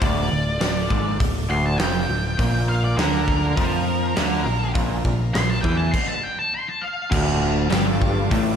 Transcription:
0.00 D1 D2 F4 A4 D5, kick, open hi-hat
0.31 D1 D2
0.61 D1 D2, snare, open hi-hat
0.90 G#1 G#2, kick
1.20 D1 D2, kick, open hi-hat
1.50 D1 D2 C6
1.66 A5
1.79 F1 F2 G5, snare, open hi-hat
2.08 D1 D2
2.37 A#1 A#2 F4 A#4 F5, kick, open hi-hat
2.69 F5
2.84 D5
2.97 D2 D3 A#4, snare, open hi-hat
3.28 kick
3.57 F2 F3, kick, open hi-hat
4.16 D2 D3, snare, open hi-hat
4.46 A#1 A#2
4.75 A#1 A#2 A#4 F5, kick, open hi-hat
5.05 A#1 A#2, kick
5.34 A#1 A#2 C6, snare, open hi-hat
5.50 A5
5.61 E2 E3 G5, kick
5.77 A5
5.91 C6, kick, crash
6.07 A5
6.23 G5
6.39 A5
6.54 C6
6.68 A5
6.82 F5
7.11 D1 D2 F4 A4 D5, kick, crash
7.70 G1 G2, snare, clap, open hi-hat
8.02 kick
8.30 A1 A2, kick, open hi-hat

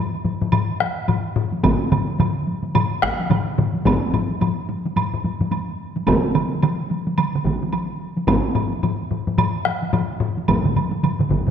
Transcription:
0.25 taiko low-mid, taiko high
0.41 taiko low-mid, taiko high
0.52 taiko low-mid, taiko high, high woodblock
0.80 taiko rim, taiko high
1.08 taiko low-mid, taiko high, high woodblock
1.36 taiko low-mid
1.52 taiko high
1.63 taiko, taiko low-mid, taiko mid, taiko high, high woodblock
1.91 taiko low-mid, taiko mid, taiko high, high woodblock
2.08 taiko high
2.19 taiko low-mid, taiko mid, taiko high, high woodblock
2.47 taiko high
2.64 taiko high
2.75 taiko low-mid, taiko mid, taiko high, high woodblock
3.02 taiko rim, taiko, taiko high
3.19 taiko high
3.30 taiko low-mid, taiko mid, taiko high, high woodblock
3.58 taiko low-mid, taiko mid, taiko high
3.75 taiko high
3.86 taiko, taiko low-mid, taiko high, high woodblock
4.13 taiko low-mid, taiko high, high woodblock
4.30 taiko high
4.41 taiko low-mid, taiko high, high woodblock
4.69 taiko high
4.86 taiko high
4.97 taiko low-mid, taiko high, high woodblock
5.14 taiko low-mid
5.24 taiko low-mid, taiko high
5.41 taiko low-mid, taiko high
5.52 taiko high, high woodblock
5.96 taiko high
6.07 taiko, taiko mid, taiko high, high woodblock
6.35 taiko mid, taiko high, high woodblock
6.52 taiko high
6.63 taiko mid, taiko high, high woodblock
6.90 taiko high
7.07 taiko high
7.18 taiko mid, taiko high, high woodblock
7.35 taiko mid
7.45 taiko, taiko mid, taiko high
7.62 taiko mid, taiko high
7.73 taiko high, high woodblock
8.17 taiko high
8.28 taiko, taiko low-mid, taiko high, high woodblock
8.55 taiko low-mid, taiko high, high woodblock
8.72 taiko high
8.83 taiko low-mid, taiko high, high woodblock
9.11 taiko low-mid, taiko high
9.27 taiko low-mid, taiko high
9.38 taiko low-mid, taiko high, high woodblock
9.65 taiko rim, taiko high
9.82 taiko high
9.93 taiko low-mid, taiko high, high woodblock
10.20 taiko low-mid
10.37 taiko high
10.48 taiko, taiko low-mid, taiko mid, taiko high, high woodblock
10.65 taiko low-mid, taiko mid
10.76 taiko low-mid, taiko mid, taiko high, high woodblock
10.92 taiko high
11.03 taiko low-mid, taiko mid, taiko high, high woodblock
11.19 taiko low-mid, taiko mid
11.30 taiko, taiko low-mid, taiko mid, taiko high
11.47 taiko low-mid, taiko high

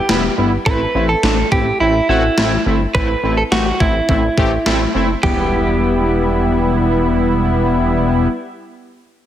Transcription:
Already playing: G4
0.09 E1 G3 B3 E4, snare
0.37 G1 G3 B3 E4
0.66 A1 A3 C4 E4 B4, kick
0.95 A1 A3 C4 E4
1.09 A4
1.23 A1 A3 C4 D4, snare
1.52 A1 A3 C4 E4 G4, kick
1.80 A1 A3 C4 E4
2.09 A1 A3 C4 E4 F#4
2.38 A1 A3 C4 E4, snare
2.66 G1 A3 C4 E4
2.95 A1 A3 C4 E4 B4, kick
3.23 A1 A3 C4 E4
3.37 A4
3.52 A1 A3 C4 F#4 G4, snare
3.80 A1 A3 C4 E4, kick
4.09 A1 A3 C4 E4, kick
4.38 A1 A3 C4 G4, kick
4.66 A1 A3 C4 E4, snare
4.95 F#1 A3 C4 E4
5.23 E1 G3 B3 E4 G4, kick, floor tom

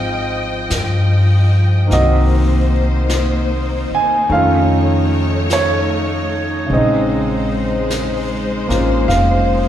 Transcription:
Already playing: G#1 F3 D#4 G4 G#4 D#5 F5 G5
0.70 G2, brush sweep, snare, hi-hat pedal
1.87 D#3 A#3 C4 C5, brush sweep, snare
1.91 C2 D#4 F#4 D#5
3.09 brush sweep, snare, hi-hat pedal
3.91 G#5, muted upright bass stroke
4.29 F2 D#3 A3 C#4 C#5 F5, brush sweep
4.34 F4
5.50 C#5, brush sweep, snare, hi-hat pedal
6.66 A#1 C#3 G#3 C5, brush sweep
6.73 C4 D#5
6.77 D#4
7.90 brush sweep, snare, hi-hat pedal
8.68 A1 A#3 C#4 F4, snare
9.08 F1 F5, brush sweep, snare

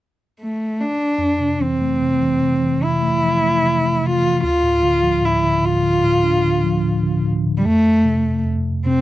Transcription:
0.40 A3
0.81 D4
1.18 F2
1.40 C3
1.60 E3 C4
1.81 A3
2.02 C3
2.21 E3
2.41 C3
2.62 E3
2.81 C3 E4
3.02 A3
3.22 F3
3.42 A3
3.63 C3
4.03 C3 F4
4.22 E3
4.43 D2 F4
4.63 A2
4.83 D3
5.02 F3
5.22 A2 E4
5.43 D3
5.64 A2 F4
5.83 D3
6.02 A2
6.24 D4
6.44 D3
6.63 F3
6.83 A2
7.02 D3
7.23 A2
7.44 D3
7.57 G3
7.64 F2 A3
8.05 C3
8.45 F2
8.85 C3 C4

